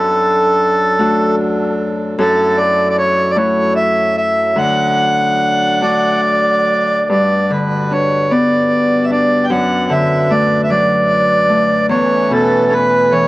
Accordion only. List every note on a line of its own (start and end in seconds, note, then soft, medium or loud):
0.00 1.36 A4 medium
2.19 2.59 A4 medium
2.57 2.88 D5 medium
2.90 2.97 D5 medium
2.98 3.31 C#5 medium
3.31 3.37 D5 medium
3.37 3.74 C#5 medium
3.76 4.16 E5 loud
4.18 4.58 E5 medium
4.58 6.21 F#5 medium
5.83 7.08 D5 medium
7.10 7.52 D5 medium
7.52 7.93 B4 medium
7.92 8.32 C#5 medium
8.31 9.06 D5 medium
9.05 9.11 E5 medium
9.12 9.46 D5 medium
9.45 9.51 G5 medium
9.51 9.92 F#5 medium
9.91 10.32 E5 medium
10.31 10.61 D5 medium
10.64 10.70 E5 medium
10.70 11.86 D5 medium
11.90 12.32 C#5 medium
12.33 12.74 A4 medium
12.72 13.13 B4 medium
13.12 13.28 C#5 medium